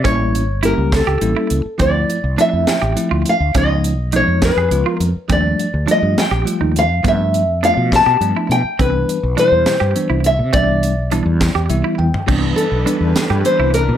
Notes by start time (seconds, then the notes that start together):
0.04 A1 G3 A#3 C#4 E4 C#5, kick, closed hi-hat
0.35 closed hi-hat
0.49 G1
0.63 G3 A#3 C#4 E4 G4 A#4, closed hi-hat
0.78 C#2
0.92 A4, kick, snare, closed hi-hat
1.07 C#2 G4
1.21 A1 G3 A#3 C#4 E4, closed hi-hat
1.37 E4
1.50 C#2, closed hi-hat
1.65 muted fretless electric bass stroke
1.78 D2 F3 A3 C4 E4 D5, kick, closed hi-hat
2.10 closed hi-hat
2.24 C2
2.37 F3 A3 C4 D4 E4 E5, closed hi-hat
2.53 F2
2.67 G5, muted fretless electric bass stroke, snare, closed hi-hat
2.82 A1 G4
2.96 F3 A3 C4 E4, closed hi-hat
3.11 D2 F4
3.26 F5, closed hi-hat
3.40 D2
3.55 C#2 F3 G#3 B3 C#4 D#4 D#5, kick, closed hi-hat
3.84 closed hi-hat
3.99 B1
4.12 F3 G#3 B3 D#4 C#5, closed hi-hat
4.28 F2
4.42 B4, kick, snare, closed hi-hat
4.57 F2 G#4
4.71 C#2 F3 G#3 B3 F4, closed hi-hat
4.86 F4 A#4
5.00 F2, closed hi-hat
5.16 muted fretless electric bass stroke
5.29 D#2 F3 G3 A3 C4 D4 D5, kick, closed hi-hat
5.59 closed hi-hat
5.74 D2
5.86 F3 G3 A3 D4 F4, closed hi-hat
5.91 D#5
6.02 G2
6.17 G5, muted fretless electric bass stroke, snare, closed hi-hat
6.31 A#1 G4
6.45 F3 G3 A3 F4, closed hi-hat
6.61 D#2 D#4
6.76 F5, closed hi-hat
6.90 F2
7.03 G2 F3 A3 B3 D4, kick, closed hi-hat
7.08 E5
7.34 closed hi-hat
7.48 F2
7.63 F3 A3 B3 D4 F4 F5, closed hi-hat
7.77 B2
7.92 A5, kick, snare, closed hi-hat
8.06 B2 G4
8.21 G2 F3 A3 B3 D4, closed hi-hat
8.37 E4
8.49 B2 G5, closed hi-hat
8.64 muted fretless electric bass stroke
8.79 C2 E3 G3 B3 C4 D4 B4, kick, closed hi-hat
9.09 closed hi-hat
9.23 B1
9.37 B2 E3 G3 D4 E4 C5, closed hi-hat
9.52 E2
9.66 muted fretless electric bass stroke, snare, closed hi-hat
9.80 G2 G4
9.95 E3 G3 B3 D4, closed hi-hat
10.10 C2 E4
10.24 E5, closed hi-hat
10.39 C3
10.53 C2 E3 G3 B3 C4 D4 D5, kick, closed hi-hat
10.83 closed hi-hat
10.97 B1
11.11 E3 G3 B3 D4 E4, closed hi-hat
11.26 E2
11.41 kick, snare, closed hi-hat
11.55 E2 G4
11.69 C2 E3 G3 B3 E4 E5, closed hi-hat
11.84 E4
11.98 E2 G5, high tom
12.14 muted fretless electric bass stroke, floor tom
12.27 C2 E3 G3 B3 C4 D4 B4, kick, crash
12.56 A4, closed hi-hat
12.72 B1
12.86 E3 G3 B3 D4, closed hi-hat
13.01 E2
13.16 muted fretless electric bass stroke, snare, closed hi-hat
13.30 G2 G4
13.44 E3 G3 B3 D4 C5, closed hi-hat
13.59 C2 E4
13.74 A#4, closed hi-hat
13.89 C3